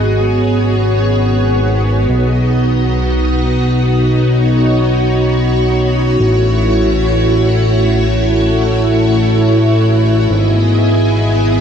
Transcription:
Already playing: G#1 B3 F#4 G#4
0.05 C#5
2.10 B1 D#4 F#4 D#5
4.15 C#5
6.20 A1 A3 E4
10.30 G#1 B3 G#4 D#5

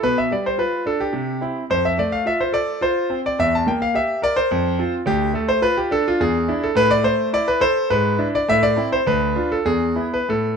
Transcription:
0.03 B2 B4
0.18 E5
0.31 G3 D5
0.46 C5
0.58 F4 B4
0.86 D4 A4
1.00 G4
1.13 C3
1.41 C4 E4
1.70 F2 C5
1.85 E5
1.98 A3 D5
2.12 F5
2.26 F4 E5
2.41 C5
2.52 A4 D5
2.81 F4 C5
3.10 C4
3.26 D5
3.39 E2 E5
3.55 A5
3.67 A#3 G5
3.82 F5
3.94 G4 E5
4.22 A#4 D5
4.36 C5
4.51 F2
4.79 C4 F4
5.06 D2 G4
5.34 A3 A4
5.49 C5
5.62 F4 B4
5.77 G4
5.91 D4 A4
6.08 F4
6.20 E2 G#4
6.48 D4 E4
6.63 A4
6.75 A2 B4
6.91 D5
7.03 A3 C5
7.33 E4 D5
7.48 B4
7.61 A4 C5
7.90 G#2 B4
8.19 D4 E4
8.35 D5
8.49 A2 E5
8.63 D5
8.76 C4 E4
8.92 C5
9.07 D2 B4
9.35 D4 F4
9.52 A4
9.65 E2 G#4
9.96 B3 E4
10.14 B4
10.29 A2 A4

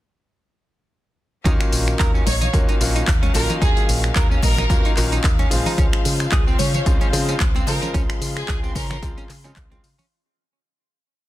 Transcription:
1.44 D#2 D#3 F#3 A#3 C#4 D#4 F4 F5, kick, closed hi-hat, tambourine
1.61 finger snap, closed hi-hat, tambourine
1.72 A#1, open hi-hat, tambourine
1.88 finger snap, closed hi-hat, tambourine
1.99 D#2 A#4, kick, clap, closed hi-hat, tambourine
2.14 C#4, tambourine
2.26 A#1 D#4 C#5, open hi-hat, tambourine, muted conga, high conga
2.41 D#4 C#5, closed hi-hat, tambourine, low conga
2.53 D#2 D#3 F#3 A#3 C#4 F4, kick, closed hi-hat, tambourine
2.69 D#4, closed hi-hat, tambourine, muted conga
2.80 A#1 D#3 F#3 A#3 C#4 F4, open hi-hat, tambourine
2.96 D#4, closed hi-hat, tambourine
3.08 D#2, kick, clap, closed hi-hat, tambourine
3.23 C#4, closed hi-hat, tambourine, high conga
3.33 A#1 D#3 F#3 A#3 C#4 F4 A#4, open hi-hat, tambourine, muted conga
3.50 D#4, closed hi-hat, tambourine, low conga
3.61 D#2 D#4 G#4, kick, closed hi-hat, tambourine
3.77 closed hi-hat, tambourine
3.89 A#1, open hi-hat, tambourine
4.04 finger snap, closed hi-hat, tambourine
4.16 D#2 A#4, kick, clap, closed hi-hat, tambourine
4.31 C#4, tambourine
4.42 A#1 D#4 A#4, kick, open hi-hat, tambourine, muted conga, high conga
4.58 D#4, finger snap, closed hi-hat, tambourine, low conga
4.69 D#2 D#3 F#3 A#3 C#4 F4, kick, closed hi-hat, tambourine
4.85 D#4, closed hi-hat, tambourine
4.96 A#1 D#3 F#3 A#3 C#4 F4, clap, open hi-hat, tambourine
5.12 D#4, closed hi-hat, tambourine
5.24 D#2, kick, clap, closed hi-hat, tambourine
5.39 C#4, closed hi-hat, tambourine, muted conga, high conga
5.50 A#1 C#3 F3 G#3 F4 C5, open hi-hat, tambourine
5.66 D#4, open hi-hat, tambourine, low conga
5.78 C#2 C#4 C5, kick, closed hi-hat, tambourine
5.93 finger snap, closed hi-hat, tambourine
6.05 C#3, open hi-hat, tambourine
6.20 finger snap, closed hi-hat, tambourine
6.32 C#2 G#4, kick, clap, closed hi-hat, tambourine
6.47 C4, tambourine
6.59 C#3 C#4 C#5, open hi-hat, tambourine, muted conga, high conga
6.74 C#4 C#5, closed hi-hat, tambourine, low conga
6.86 C#2 C#3 F3 G#3 C4 F4, kick, closed hi-hat, tambourine
7.01 C#4, closed hi-hat, tambourine, muted conga
7.12 C#3 F3 G#3 C4 F4, open hi-hat, tambourine
7.29 C#4, closed hi-hat, tambourine
7.40 C#2, kick, clap, closed hi-hat, tambourine
7.55 C4, closed hi-hat, tambourine, high conga
7.66 C#3 F3 G#3 F4 A#4 C5, open hi-hat, tambourine, muted conga
7.82 C#4, closed hi-hat, tambourine, low conga
7.94 C#2 C#4 C6, kick, closed hi-hat, tambourine
8.10 finger snap, closed hi-hat, tambourine
8.21 C#3, open hi-hat, tambourine
8.37 G#4, finger snap, closed hi-hat, tambourine
8.48 C#2 G#4, kick, clap, closed hi-hat, tambourine
8.63 C4, tambourine
8.75 C#3 C#4 A#4, kick, open hi-hat, tambourine, muted conga, high conga
8.90 C#4 A#4, finger snap, closed hi-hat, tambourine, low conga
9.03 C#2 C#3 F3 G#3 C4 F4, kick, closed hi-hat, tambourine
9.17 C#4, closed hi-hat, tambourine
9.29 C#3, clap, open hi-hat, tambourine
9.44 C#3 F3 G#3 C4 C#4 F4, closed hi-hat, tambourine
9.56 C#2, kick, clap, closed hi-hat, tambourine
9.71 C#3 F3 G#3 C4 F4, closed hi-hat, tambourine, muted conga, high conga
9.84 C#3, open hi-hat, tambourine
9.99 C#4, open hi-hat, tambourine, low conga

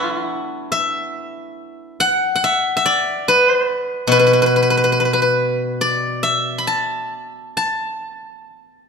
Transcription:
Already playing: B3 D4 E4 F#4 B4 E5 F#5 A5 B5 D6
0.72 E5
2.00 F#5
2.36 F#5
2.44 E5
2.77 E5
2.86 D5
3.28 B4
4.07 B2
4.12 B4
4.19 B4
4.27 B4
4.33 B4
4.42 B4
4.46 B4
4.56 B4
4.63 B4
4.70 B4
4.77 B4
4.84 B4
4.92 B4
5.00 B4
5.05 B4
5.13 B4
5.22 B4
5.81 D5
6.23 E5
6.58 B5
6.67 A5
7.57 A5

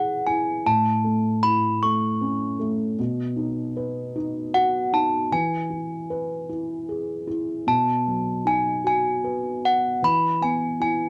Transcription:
Already playing: E3 E4 G#4 B4
0.27 E4 G#5
0.66 A2 A5
1.04 A3
1.43 E4 B5
1.83 A3 C#6
2.21 C#4
2.59 A3
2.99 B2
3.36 D#4
3.76 B4
4.16 D#4
4.54 F#4 F#5
4.93 D#4 A5
5.32 E3 G#5
5.70 E4
6.10 B4
6.49 E4
6.89 G#4
7.27 E4
7.67 B2 A5
8.07 F#3
8.45 D#4 G#5
8.84 F#4 G#5
9.24 B4
9.65 F#5
10.02 E3 B5
10.41 B3 G#5
10.80 E4 G#5

